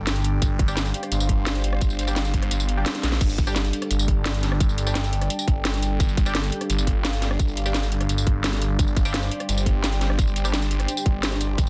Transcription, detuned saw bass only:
0.00 0.40 G1 medium
0.42 0.93 G1 medium
1.12 2.50 G1 loud
2.51 2.85 G1 loud
3.03 3.20 A#1 loud
3.21 3.72 G1 medium
3.91 5.29 G1 loud
5.48 5.99 G1 loud
6.00 6.51 G1 medium
6.70 8.08 G1 loud
8.09 8.78 G1 loud
8.79 9.30 G1 medium
9.49 10.87 G1 loud
11.06 11.57 G1 loud
11.58 11.69 G1 medium

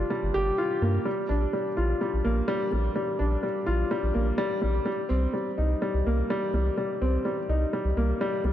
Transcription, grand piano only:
0.00 0.10 G3 loud
0.00 0.82 A#3 medium
0.00 1.08 D4 medium
0.00 0.58 F4 medium
0.10 0.24 G3 medium
0.34 0.57 G4 loud
0.58 0.81 F4 medium
0.82 1.05 A#3 medium
1.05 1.28 G3 medium
1.29 1.52 D4 medium
1.53 1.67 G3 medium
1.77 2.00 F4 medium
2.01 2.15 G3 medium
2.24 2.47 A#3 medium
2.48 2.71 G3 loud
2.72 2.94 G3 medium
2.95 3.19 G3 medium
3.19 3.42 D4 medium
3.43 3.57 G3 medium
3.66 3.90 F4 medium
3.91 4.05 G3 medium
4.14 4.37 A#3 medium
4.38 4.60 G3 loud
4.62 4.84 G3 medium
4.85 5.09 G3 medium
5.09 5.33 C4 medium
5.33 5.48 G3 medium
5.58 5.81 D#4 medium
5.82 5.96 G3 medium
6.06 6.29 A#3 medium
6.30 6.52 G3 loud
6.54 6.76 G3 medium
6.77 7.00 G3 medium
7.02 7.24 C4 medium
7.25 7.39 G3 medium
7.49 7.72 D#4 medium
7.73 7.86 G3 medium
7.97 8.19 A#3 medium
8.21 8.43 G3 loud
8.45 8.53 G3 medium

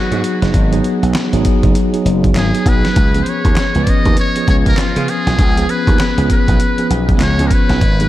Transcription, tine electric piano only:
0.00 0.11 F#3 medium
0.00 0.12 B3 medium
0.00 0.12 D#4 medium
0.00 2.98 F#4 medium
0.00 0.13 G#4 medium
0.11 0.50 F#3 medium
0.11 0.51 B3 medium
0.11 0.51 D#4 medium
0.11 0.51 G#4 medium
0.72 1.11 F#3 loud
0.72 1.11 B3 loud
0.72 1.11 D#4 medium
0.72 1.12 G#4 loud
1.33 1.72 F#3 medium
1.33 1.72 B3 medium
1.33 1.72 D#4 medium
1.33 1.72 G#4 loud
1.93 2.32 F#3 medium
1.93 2.33 B3 medium
1.93 2.33 D#4 medium
1.93 2.33 G#4 medium
2.54 2.93 F#3 medium
2.54 2.93 B3 medium
2.54 2.93 D#4 medium
2.54 2.94 G#4 medium
3.15 3.54 F3 medium
3.15 3.54 B3 medium
3.15 3.54 C#4 medium
3.15 3.54 G#4 medium
3.75 4.14 F3 medium
3.75 4.15 B3 medium
3.75 4.15 C#4 medium
3.75 4.15 B4 medium
4.36 4.75 F3 medium
4.36 4.75 B3 medium
4.36 4.75 C#4 medium
4.36 4.75 G#4 medium
4.97 5.36 F3 medium
4.97 5.36 B3 medium
4.97 5.36 C#4 medium
4.97 5.36 G#4 medium
5.57 5.96 F3 medium
5.57 5.96 B3 medium
5.57 5.96 C#4 medium
5.57 5.97 G#4 medium
6.17 6.56 F3 medium
6.17 6.57 B3 medium
6.17 6.57 C#4 medium
6.17 6.57 G#4 medium
6.78 7.17 F3 medium
6.78 7.17 B3 medium
6.78 7.18 C#4 medium
6.78 7.18 G#4 medium
7.39 7.78 F3 medium
7.39 7.78 B3 medium
7.39 7.78 C#4 medium
7.39 7.79 G#4 medium
8.00 8.09 F#3 medium
8.00 8.09 B3 medium
8.00 8.09 D#4 medium
8.00 8.09 G#4 medium

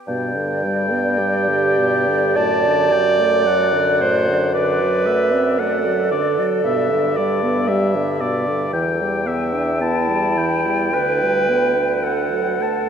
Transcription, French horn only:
0.08 0.38 B2 medium
0.36 0.65 D3 medium
0.63 0.93 G3 medium
0.91 1.21 B3 medium
1.19 1.50 G3 medium
1.48 1.79 D3 medium
1.78 2.09 B2 medium
2.08 2.35 D3 medium
2.36 2.66 A2 medium
2.65 2.93 D3 medium
2.92 3.21 F#3 medium
3.19 3.48 A3 medium
3.47 3.76 F#3 medium
3.74 4.03 D3 medium
4.01 4.29 A2 medium
4.28 4.54 D3 medium
4.54 4.82 D3 medium
4.80 5.08 F#3 medium
5.06 5.34 A3 medium
5.32 5.61 C4 medium
5.59 5.87 A3 medium
5.85 6.13 F#3 medium
6.12 6.40 D3 medium
6.39 6.64 F#3 medium
6.64 6.93 B2 medium
6.92 7.19 D3 medium
7.17 7.45 G3 medium
7.43 7.70 B3 medium
7.69 7.97 G3 medium
7.95 8.23 D3 medium
8.21 8.49 B2 medium
8.48 8.73 D3 medium
8.73 9.02 E3 medium
9.00 9.28 G3 medium
9.26 9.55 B3 medium
9.54 9.82 D4 medium
9.80 10.10 B3 medium
10.08 10.39 G3 medium
10.37 10.67 E3 medium
10.66 10.93 G3 medium
10.94 11.23 D3 medium
11.21 11.50 G3 medium
11.48 11.77 B3 medium
11.75 12.02 D4 soft
12.03 12.33 D3 medium
12.31 12.61 F#3 soft
12.60 12.89 A3 medium

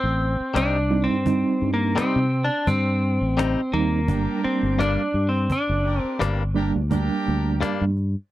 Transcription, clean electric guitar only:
0.54 0.76 C3 medium
0.54 0.77 G3 medium
0.54 0.77 C4 medium
0.54 0.78 D#4 medium
1.96 2.18 C3 medium
1.96 2.18 G3 medium
1.96 2.19 C4 medium
1.96 2.19 D#4 medium
3.37 3.59 C3 medium
3.37 3.60 G3 medium
3.37 3.60 C4 medium
3.37 3.60 D#4 medium
4.79 5.01 G2 medium
4.79 5.01 G3 medium
4.79 5.02 A#3 medium
4.79 5.02 D4 medium
6.19 6.42 G2 medium
6.19 6.42 G3 medium
6.19 6.43 A#3 medium
6.19 6.43 D4 medium
7.61 7.83 G2 medium
7.61 7.84 G3 medium
7.61 7.84 A#3 loud
7.61 7.84 D4 medium

